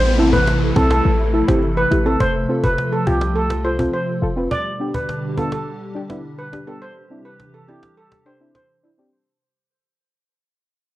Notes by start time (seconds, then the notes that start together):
Already playing: A1 C3 E3 A3 E4 A4, downlifter
0.04 cajon slap
0.18 C4 E4 A4, cajon slap
0.33 B4, cajon bass
0.47 cajon slap
0.62 cajon slap
0.76 B1 C4 E4 A4, cajon bass
0.90 A4, cajon slap
1.05 A1, cajon slap
1.19 cajon slap
1.33 E4 A4, cajon slap
1.48 G1 C4 E4 G4, cajon slap
1.62 cajon slap
1.77 B4, cajon slap
1.91 A1 E4 G4, cajon slap
2.05 C4 E4 A4, cajon slap
2.20 F1 F3 F4 C5, cajon bass
2.49 C4 F4 A4
2.64 F1 B4, cajon bass
2.78 cajon slap
2.92 A4
3.06 C2 C4 F4 G4 A4, cajon bass
3.21 cajon slap
3.36 A4
3.50 cajon slap
3.64 F4 A4 C5
3.78 C4 F4 A4, cajon bass
3.94 C5
4.22 F1 F4 A4
4.36 C4 F4 B4
4.51 B2 D3 G3 D4 G4 D5, cajon bass
4.80 B3 D4 G4
4.94 B4, cajon bass
5.09 cajon slap
5.37 B3 D4 F4 A4, cajon bass
5.52 A4, cajon slap
5.95 D4 G4
6.09 B3 D4 E4, cajon slap
6.39 B4
6.53 D4 G4, cajon slap
6.67 B3 D4 G4 A4
6.82 C3 E3 G4 C5
7.10 C4 D4 E4
7.25 B4
7.40 cajon slap
7.54 A4
7.68 C4 D4 E4 G4
7.83 cajon slap
7.97 A4
8.12 cajon slap
8.26 D4 G4 C5
8.40 C4 D4 E4
8.55 C5, cajon slap
8.83 D4 E4
8.98 C4 D4 G4